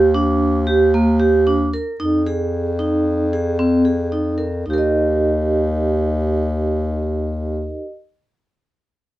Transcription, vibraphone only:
0, 0, Header, 1, 2, 480
1, 0, Start_track
1, 0, Key_signature, -3, "major"
1, 0, Tempo, 533808
1, 1795, Time_signature, 5, 2, 24, 8
1, 8265, End_track
2, 0, Start_track
2, 0, Title_t, "Vibraphone"
2, 0, Program_c, 0, 11
2, 130, Note_on_c, 0, 62, 59
2, 514, Note_off_c, 0, 62, 0
2, 602, Note_on_c, 0, 67, 53
2, 795, Note_off_c, 0, 67, 0
2, 846, Note_on_c, 0, 58, 59
2, 1037, Note_off_c, 0, 58, 0
2, 1076, Note_on_c, 0, 67, 58
2, 1270, Note_off_c, 0, 67, 0
2, 1319, Note_on_c, 0, 62, 54
2, 1512, Note_off_c, 0, 62, 0
2, 1561, Note_on_c, 0, 70, 52
2, 1752, Note_off_c, 0, 70, 0
2, 1797, Note_on_c, 0, 63, 63
2, 1989, Note_off_c, 0, 63, 0
2, 2037, Note_on_c, 0, 68, 57
2, 2423, Note_off_c, 0, 68, 0
2, 2509, Note_on_c, 0, 63, 58
2, 2899, Note_off_c, 0, 63, 0
2, 2996, Note_on_c, 0, 68, 55
2, 3189, Note_off_c, 0, 68, 0
2, 3229, Note_on_c, 0, 60, 59
2, 3425, Note_off_c, 0, 60, 0
2, 3462, Note_on_c, 0, 68, 42
2, 3661, Note_off_c, 0, 68, 0
2, 3706, Note_on_c, 0, 63, 50
2, 3904, Note_off_c, 0, 63, 0
2, 3937, Note_on_c, 0, 70, 46
2, 4139, Note_off_c, 0, 70, 0
2, 4188, Note_on_c, 0, 63, 39
2, 4227, Note_on_c, 0, 67, 37
2, 4257, Note_on_c, 0, 70, 41
2, 4298, Note_on_c, 0, 75, 41
2, 6994, Note_off_c, 0, 63, 0
2, 7033, Note_off_c, 0, 67, 0
2, 7063, Note_off_c, 0, 70, 0
2, 7104, Note_off_c, 0, 75, 0
2, 8265, End_track
0, 0, End_of_file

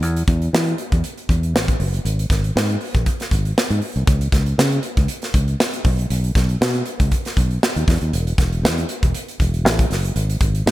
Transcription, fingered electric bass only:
0, 0, Header, 1, 2, 480
1, 0, Start_track
1, 0, Tempo, 506757
1, 24, Time_signature, 4, 2, 24, 8
1, 10145, End_track
2, 0, Start_track
2, 0, Title_t, "Fingered electric bass"
2, 0, Program_c, 0, 33
2, 22, Note_on_c, 0, 40, 95
2, 210, Note_off_c, 0, 40, 0
2, 262, Note_on_c, 0, 40, 92
2, 449, Note_off_c, 0, 40, 0
2, 504, Note_on_c, 0, 52, 87
2, 690, Note_off_c, 0, 52, 0
2, 874, Note_on_c, 0, 40, 79
2, 959, Note_off_c, 0, 40, 0
2, 1223, Note_on_c, 0, 40, 78
2, 1462, Note_off_c, 0, 40, 0
2, 1462, Note_on_c, 0, 33, 94
2, 1649, Note_off_c, 0, 33, 0
2, 1702, Note_on_c, 0, 30, 85
2, 1889, Note_off_c, 0, 30, 0
2, 1941, Note_on_c, 0, 32, 97
2, 2128, Note_off_c, 0, 32, 0
2, 2179, Note_on_c, 0, 32, 91
2, 2367, Note_off_c, 0, 32, 0
2, 2422, Note_on_c, 0, 44, 87
2, 2609, Note_off_c, 0, 44, 0
2, 2791, Note_on_c, 0, 34, 79
2, 2877, Note_off_c, 0, 34, 0
2, 3140, Note_on_c, 0, 32, 83
2, 3327, Note_off_c, 0, 32, 0
2, 3508, Note_on_c, 0, 44, 90
2, 3595, Note_off_c, 0, 44, 0
2, 3748, Note_on_c, 0, 36, 84
2, 3835, Note_off_c, 0, 36, 0
2, 3860, Note_on_c, 0, 37, 95
2, 4047, Note_off_c, 0, 37, 0
2, 4096, Note_on_c, 0, 37, 93
2, 4285, Note_off_c, 0, 37, 0
2, 4341, Note_on_c, 0, 49, 96
2, 4527, Note_off_c, 0, 49, 0
2, 4709, Note_on_c, 0, 37, 82
2, 4795, Note_off_c, 0, 37, 0
2, 5058, Note_on_c, 0, 37, 81
2, 5246, Note_off_c, 0, 37, 0
2, 5540, Note_on_c, 0, 35, 89
2, 5727, Note_off_c, 0, 35, 0
2, 5781, Note_on_c, 0, 35, 102
2, 5968, Note_off_c, 0, 35, 0
2, 6018, Note_on_c, 0, 35, 91
2, 6206, Note_off_c, 0, 35, 0
2, 6261, Note_on_c, 0, 47, 96
2, 6448, Note_off_c, 0, 47, 0
2, 6629, Note_on_c, 0, 37, 84
2, 6715, Note_off_c, 0, 37, 0
2, 6979, Note_on_c, 0, 35, 75
2, 7167, Note_off_c, 0, 35, 0
2, 7353, Note_on_c, 0, 39, 82
2, 7438, Note_off_c, 0, 39, 0
2, 7461, Note_on_c, 0, 40, 100
2, 7562, Note_off_c, 0, 40, 0
2, 7593, Note_on_c, 0, 39, 90
2, 7678, Note_off_c, 0, 39, 0
2, 7704, Note_on_c, 0, 28, 108
2, 7890, Note_off_c, 0, 28, 0
2, 7938, Note_on_c, 0, 28, 89
2, 8178, Note_on_c, 0, 40, 87
2, 8192, Note_off_c, 0, 28, 0
2, 8366, Note_off_c, 0, 40, 0
2, 8552, Note_on_c, 0, 28, 79
2, 8638, Note_off_c, 0, 28, 0
2, 8903, Note_on_c, 0, 28, 89
2, 9139, Note_off_c, 0, 28, 0
2, 9139, Note_on_c, 0, 33, 96
2, 9327, Note_off_c, 0, 33, 0
2, 9380, Note_on_c, 0, 30, 78
2, 9568, Note_off_c, 0, 30, 0
2, 9621, Note_on_c, 0, 32, 97
2, 9808, Note_off_c, 0, 32, 0
2, 9859, Note_on_c, 0, 32, 89
2, 10047, Note_off_c, 0, 32, 0
2, 10099, Note_on_c, 0, 44, 93
2, 10145, Note_off_c, 0, 44, 0
2, 10145, End_track
0, 0, End_of_file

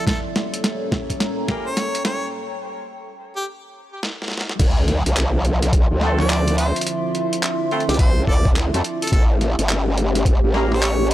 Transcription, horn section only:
0, 0, Header, 1, 2, 480
1, 0, Start_track
1, 0, Key_signature, -1, "minor"
1, 0, Tempo, 566038
1, 58, Time_signature, 4, 2, 24, 8
1, 9446, End_track
2, 0, Start_track
2, 0, Title_t, "Horn section"
2, 0, Program_c, 0, 61
2, 1259, Note_on_c, 0, 61, 77
2, 1259, Note_on_c, 0, 67, 72
2, 1260, Note_on_c, 0, 58, 75
2, 1260, Note_on_c, 0, 64, 69
2, 1260, Note_on_c, 0, 70, 82
2, 1412, Note_off_c, 0, 58, 0
2, 1412, Note_off_c, 0, 61, 0
2, 1412, Note_off_c, 0, 67, 0
2, 1412, Note_off_c, 0, 70, 0
2, 1413, Note_off_c, 0, 64, 0
2, 5100, Note_on_c, 0, 57, 76
2, 5100, Note_on_c, 0, 64, 69
2, 5100, Note_on_c, 0, 65, 71
2, 5100, Note_on_c, 0, 69, 83
2, 5101, Note_on_c, 0, 60, 73
2, 5253, Note_off_c, 0, 57, 0
2, 5253, Note_off_c, 0, 60, 0
2, 5253, Note_off_c, 0, 64, 0
2, 5253, Note_off_c, 0, 65, 0
2, 5253, Note_off_c, 0, 69, 0
2, 6536, Note_on_c, 0, 65, 81
2, 6537, Note_on_c, 0, 60, 86
2, 6537, Note_on_c, 0, 64, 78
2, 6538, Note_on_c, 0, 57, 89
2, 6538, Note_on_c, 0, 69, 96
2, 6633, Note_off_c, 0, 65, 0
2, 6634, Note_off_c, 0, 57, 0
2, 6634, Note_off_c, 0, 60, 0
2, 6634, Note_off_c, 0, 64, 0
2, 6634, Note_off_c, 0, 69, 0
2, 7412, Note_on_c, 0, 57, 85
2, 7412, Note_on_c, 0, 60, 85
2, 7412, Note_on_c, 0, 64, 78
2, 7412, Note_on_c, 0, 69, 92
2, 7413, Note_on_c, 0, 65, 76
2, 7466, Note_off_c, 0, 57, 0
2, 7466, Note_off_c, 0, 60, 0
2, 7466, Note_off_c, 0, 64, 0
2, 7466, Note_off_c, 0, 65, 0
2, 7466, Note_off_c, 0, 69, 0
2, 8937, Note_on_c, 0, 58, 76
2, 8937, Note_on_c, 0, 64, 71
2, 8937, Note_on_c, 0, 70, 82
2, 8938, Note_on_c, 0, 61, 75
2, 8938, Note_on_c, 0, 67, 70
2, 9091, Note_off_c, 0, 58, 0
2, 9091, Note_off_c, 0, 61, 0
2, 9091, Note_off_c, 0, 64, 0
2, 9091, Note_off_c, 0, 70, 0
2, 9092, Note_off_c, 0, 67, 0
2, 9446, End_track
0, 0, End_of_file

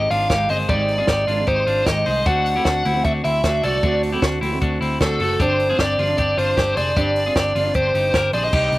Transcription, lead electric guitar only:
0, 0, Header, 1, 2, 480
1, 0, Start_track
1, 0, Tempo, 391901
1, 850, Time_signature, 4, 2, 24, 8
1, 10760, End_track
2, 0, Start_track
2, 0, Title_t, "Lead electric guitar"
2, 0, Program_c, 0, 29
2, 131, Note_on_c, 0, 77, 95
2, 577, Note_off_c, 0, 77, 0
2, 612, Note_on_c, 0, 75, 80
2, 676, Note_off_c, 0, 75, 0
2, 853, Note_on_c, 0, 74, 84
2, 1808, Note_off_c, 0, 74, 0
2, 1813, Note_on_c, 0, 72, 82
2, 2283, Note_off_c, 0, 72, 0
2, 2288, Note_on_c, 0, 75, 90
2, 2773, Note_on_c, 0, 78, 90
2, 2785, Note_off_c, 0, 75, 0
2, 3234, Note_off_c, 0, 78, 0
2, 3248, Note_on_c, 0, 78, 88
2, 3725, Note_off_c, 0, 78, 0
2, 3730, Note_on_c, 0, 76, 84
2, 3795, Note_off_c, 0, 76, 0
2, 3974, Note_on_c, 0, 76, 95
2, 4460, Note_on_c, 0, 74, 73
2, 4468, Note_off_c, 0, 76, 0
2, 4903, Note_off_c, 0, 74, 0
2, 6151, Note_on_c, 0, 69, 84
2, 6631, Note_on_c, 0, 72, 84
2, 6636, Note_off_c, 0, 69, 0
2, 7069, Note_off_c, 0, 72, 0
2, 7107, Note_on_c, 0, 74, 95
2, 7553, Note_off_c, 0, 74, 0
2, 7568, Note_on_c, 0, 74, 84
2, 7813, Note_off_c, 0, 74, 0
2, 7818, Note_on_c, 0, 72, 95
2, 8292, Note_off_c, 0, 72, 0
2, 8297, Note_on_c, 0, 74, 74
2, 8517, Note_off_c, 0, 74, 0
2, 8537, Note_on_c, 0, 74, 87
2, 9490, Note_off_c, 0, 74, 0
2, 9495, Note_on_c, 0, 72, 65
2, 10161, Note_off_c, 0, 72, 0
2, 10214, Note_on_c, 0, 74, 73
2, 10333, Note_off_c, 0, 74, 0
2, 10339, Note_on_c, 0, 75, 80
2, 10760, Note_off_c, 0, 75, 0
2, 10760, End_track
0, 0, End_of_file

